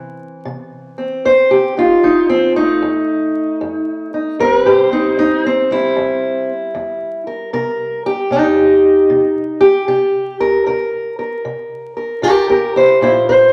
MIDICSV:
0, 0, Header, 1, 2, 480
1, 0, Start_track
1, 0, Tempo, 785340
1, 757, Time_signature, 4, 2, 24, 8
1, 8268, End_track
2, 0, Start_track
2, 0, Title_t, "Steel-string acoustic guitar"
2, 0, Program_c, 0, 25
2, 0, Note_on_c, 0, 48, 67
2, 0, Note_on_c, 0, 52, 42
2, 0, Note_on_c, 0, 60, 74
2, 243, Note_off_c, 0, 48, 0
2, 277, Note_on_c, 0, 48, 67
2, 591, Note_off_c, 0, 60, 0
2, 599, Note_on_c, 0, 60, 44
2, 725, Note_off_c, 0, 48, 0
2, 740, Note_off_c, 0, 52, 0
2, 765, Note_on_c, 0, 41, 67
2, 767, Note_on_c, 0, 72, 86
2, 922, Note_off_c, 0, 72, 0
2, 922, Note_on_c, 0, 67, 71
2, 1080, Note_off_c, 0, 67, 0
2, 1081, Note_off_c, 0, 60, 0
2, 1083, Note_on_c, 0, 63, 43
2, 1091, Note_on_c, 0, 65, 78
2, 1209, Note_off_c, 0, 41, 0
2, 1238, Note_off_c, 0, 63, 0
2, 1242, Note_on_c, 0, 41, 59
2, 1246, Note_on_c, 0, 63, 81
2, 1399, Note_off_c, 0, 63, 0
2, 1402, Note_on_c, 0, 60, 89
2, 1561, Note_off_c, 0, 60, 0
2, 1564, Note_on_c, 0, 57, 43
2, 1566, Note_on_c, 0, 63, 90
2, 1688, Note_off_c, 0, 41, 0
2, 1726, Note_off_c, 0, 65, 0
2, 1726, Note_on_c, 0, 41, 72
2, 2170, Note_off_c, 0, 41, 0
2, 2206, Note_on_c, 0, 41, 72
2, 2518, Note_off_c, 0, 63, 0
2, 2529, Note_on_c, 0, 63, 46
2, 2651, Note_off_c, 0, 41, 0
2, 2666, Note_off_c, 0, 57, 0
2, 2668, Note_off_c, 0, 63, 0
2, 2686, Note_on_c, 0, 40, 70
2, 2690, Note_on_c, 0, 55, 49
2, 2691, Note_on_c, 0, 70, 97
2, 2697, Note_on_c, 0, 60, 47
2, 2765, Note_off_c, 0, 70, 0
2, 2765, Note_on_c, 0, 71, 97
2, 2849, Note_on_c, 0, 67, 69
2, 2911, Note_off_c, 0, 71, 0
2, 2911, Note_on_c, 0, 72, 97
2, 3002, Note_off_c, 0, 60, 0
2, 3004, Note_on_c, 0, 60, 43
2, 3005, Note_off_c, 0, 67, 0
2, 3012, Note_on_c, 0, 63, 81
2, 3131, Note_off_c, 0, 40, 0
2, 3163, Note_off_c, 0, 63, 0
2, 3163, Note_on_c, 0, 40, 60
2, 3170, Note_on_c, 0, 63, 84
2, 3326, Note_off_c, 0, 63, 0
2, 3327, Note_off_c, 0, 72, 0
2, 3337, Note_off_c, 0, 60, 0
2, 3340, Note_on_c, 0, 60, 76
2, 3485, Note_off_c, 0, 55, 0
2, 3488, Note_on_c, 0, 55, 45
2, 3497, Note_on_c, 0, 64, 86
2, 3610, Note_off_c, 0, 40, 0
2, 3645, Note_on_c, 0, 40, 70
2, 3971, Note_off_c, 0, 60, 0
2, 4091, Note_off_c, 0, 40, 0
2, 4123, Note_on_c, 0, 40, 68
2, 4441, Note_off_c, 0, 64, 0
2, 4443, Note_on_c, 0, 70, 50
2, 4570, Note_off_c, 0, 40, 0
2, 4603, Note_off_c, 0, 70, 0
2, 4603, Note_on_c, 0, 48, 71
2, 4606, Note_on_c, 0, 70, 81
2, 4919, Note_off_c, 0, 70, 0
2, 4927, Note_on_c, 0, 67, 83
2, 5050, Note_off_c, 0, 48, 0
2, 5077, Note_on_c, 0, 48, 66
2, 5085, Note_on_c, 0, 63, 74
2, 5526, Note_off_c, 0, 48, 0
2, 5561, Note_on_c, 0, 48, 70
2, 5567, Note_off_c, 0, 67, 0
2, 5627, Note_off_c, 0, 55, 0
2, 5871, Note_on_c, 0, 67, 81
2, 5878, Note_off_c, 0, 63, 0
2, 6008, Note_off_c, 0, 48, 0
2, 6032, Note_off_c, 0, 67, 0
2, 6037, Note_on_c, 0, 48, 69
2, 6039, Note_on_c, 0, 67, 75
2, 6355, Note_off_c, 0, 67, 0
2, 6359, Note_on_c, 0, 70, 83
2, 6486, Note_off_c, 0, 48, 0
2, 6514, Note_off_c, 0, 70, 0
2, 6518, Note_on_c, 0, 48, 67
2, 6522, Note_on_c, 0, 70, 49
2, 6831, Note_off_c, 0, 70, 0
2, 6838, Note_on_c, 0, 70, 42
2, 6966, Note_off_c, 0, 48, 0
2, 6997, Note_on_c, 0, 48, 56
2, 7307, Note_off_c, 0, 70, 0
2, 7314, Note_on_c, 0, 70, 42
2, 7444, Note_off_c, 0, 48, 0
2, 7470, Note_on_c, 0, 48, 74
2, 7475, Note_off_c, 0, 70, 0
2, 7476, Note_on_c, 0, 67, 75
2, 7483, Note_on_c, 0, 70, 85
2, 7630, Note_off_c, 0, 67, 0
2, 7635, Note_off_c, 0, 70, 0
2, 7637, Note_on_c, 0, 67, 57
2, 7642, Note_on_c, 0, 70, 66
2, 7797, Note_off_c, 0, 67, 0
2, 7797, Note_off_c, 0, 70, 0
2, 7799, Note_on_c, 0, 64, 61
2, 7806, Note_on_c, 0, 72, 79
2, 7875, Note_off_c, 0, 64, 0
2, 7920, Note_off_c, 0, 48, 0
2, 7953, Note_on_c, 0, 46, 59
2, 7956, Note_off_c, 0, 72, 0
2, 7959, Note_on_c, 0, 64, 76
2, 7965, Note_on_c, 0, 72, 73
2, 8009, Note_off_c, 0, 64, 0
2, 8115, Note_off_c, 0, 72, 0
2, 8123, Note_on_c, 0, 72, 99
2, 8266, Note_off_c, 0, 46, 0
2, 8268, Note_off_c, 0, 72, 0
2, 8268, End_track
0, 0, End_of_file